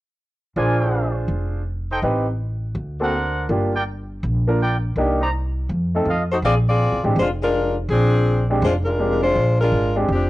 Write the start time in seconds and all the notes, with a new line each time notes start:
0.56 A#1 D4 F4 G#4 A#4 C5 D5 G#5
1.28 F1
1.90 D#4 A4 C5 G5
2.02 A1 C4 D#4 G4 B4
2.75 D2
3.00 A#3 C4 D4 F#4 A4 A#4 C5 F#5
3.49 G1 A#3 D4 F4 G4
3.74 F4 A#4 D5 G5
4.23 A#1
4.47 A#3 D4 F4 A#4
4.60 F4 A#4 D5 G5
4.96 C2 A#3 D4 D#4 G4
5.21 D#4 C5 D5 A#5
5.69 F2
5.95 A3 C4 D#4 A4
6.05 F2 F4 A4 D#5 F5
6.32 A3 D#4 F#4 C5
6.42 A#1 C4 F4 G#4 D5
6.69 C4 F4 G#4 D5
6.92 C2
7.04 A1 G#3 C4 D4 G4
7.16 F1 G#3 D4 F4 C5
7.42 G#3 D4 F4 A#4
7.89 A#1 F3 C4 D4 G#4
8.50 G#3 C4 D4 G4
8.62 F1 G#3 D4 F4 C5
8.85 G#3 D4 F4 A#4
8.99 G#3 C4 D4 G4
9.22 G#3 D4 F4 C5
9.36 A#1
9.61 G#3 D4 F4 A#4
9.72 G#1
9.96 G#3 C4 D4 G4
10.08 F1
10.12 F3 C4 D4 G4